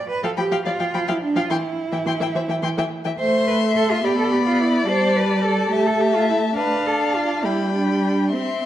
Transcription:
0.09 B4
0.23 F3 A4 F5 G5
0.37 F3 G4 G5 B5
0.52 F3 F5 G5
0.66 F3 F4 D5 F5
0.79 F3 F5 G5
0.94 F3 G5 B5
1.08 F3 E4 F5 G5
1.22 D4
1.36 F3 F4 F5 G5
1.50 E3 E4 G5 C6
1.92 E3 E5 G5
2.06 E3 G5 C6
2.20 E3 E5 G5
2.35 E3 C5 E5
2.49 E3 E5 G5
2.63 E3 G5 C6
2.78 E3 E5 G5
3.05 E3 E5 G5
3.19 A3 C5 E5 C6
3.47 B4
3.76 A4
3.91 F4
4.04 B3 G4 D5 B5
4.18 A4
4.32 G4
4.47 F4
4.60 E4
4.88 G3 C5 A5
5.16 B4
5.44 A4
5.71 A3 G4 E5
5.86 A4
6.00 G4
6.15 F4
6.29 E4
6.57 D4 B4 F5 A5
6.86 A4
7.15 F4
7.43 G3 E4 G5 B5
7.73 D4
8.03 D4
8.33 C4 E5 C6

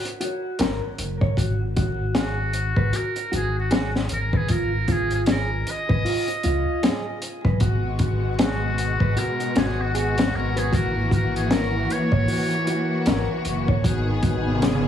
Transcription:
0.05 closed hi-hat
0.20 F#4, closed hi-hat
0.59 G#1 A#4, snare, closed hi-hat
0.98 F#1, closed hi-hat
1.21 C#5, kick
1.37 G#1 F#4, kick, closed hi-hat
1.76 F#4, kick, closed hi-hat
2.15 F#4 G#4, snare, closed hi-hat
2.53 closed hi-hat
2.76 G#1 B4, kick
2.93 F#4 A#4, closed hi-hat
3.16 closed hi-hat
3.32 G#1 F#4 G#4, closed hi-hat
3.59 F#4
3.71 F#4 G#4, snare, closed hi-hat
3.95 snare
4.09 G#1 A#4, closed hi-hat
4.33 G#4 B4, kick
4.49 F4 A#4, kick, closed hi-hat
4.88 F4 G#4, kick, closed hi-hat
5.11 G#4, closed hi-hat
5.26 G#4, snare, closed hi-hat
5.30 A#4
5.67 D#5, closed hi-hat
5.89 G#1 B4, kick
6.05 F4, open hi-hat
6.28 closed hi-hat
6.43 C#2 F4, closed hi-hat
6.83 G#4, snare, closed hi-hat
7.22 closed hi-hat
7.44 B1 B4, kick
7.60 G#1 B2 G#3 F#4, kick, closed hi-hat
7.99 F#4, kick, closed hi-hat
8.39 F#4 G#4, snare, closed hi-hat
8.78 closed hi-hat
9.00 G#1 B4, kick
9.16 F#4 A#4, closed hi-hat
9.40 closed hi-hat
9.56 G#1 F#4 G#4, snare, closed hi-hat
9.81 F#4
9.95 F#4 G#4, closed hi-hat
10.18 snare, closed hi-hat
10.34 G#1 A#4
10.56 G#4 B4, closed hi-hat
10.72 E3 A#3 F#4 A#4, kick, closed hi-hat
11.11 F#4 A#4, kick, closed hi-hat
11.36 G#4, closed hi-hat
11.50 A#4, snare, closed hi-hat
11.90 C#5, closed hi-hat
12.12 G#1 C#5, kick
12.28 F#4, open hi-hat
12.51 closed hi-hat
12.67 F#4, closed hi-hat
13.06 G#1 A#4, snare, closed hi-hat
13.45 F#1, closed hi-hat
13.68 C#5, kick
13.84 G#1 D#3 B3 F#4 G#4, kick, closed hi-hat, riser
14.23 F#4, kick, closed hi-hat
14.62 G#4, snare, closed hi-hat

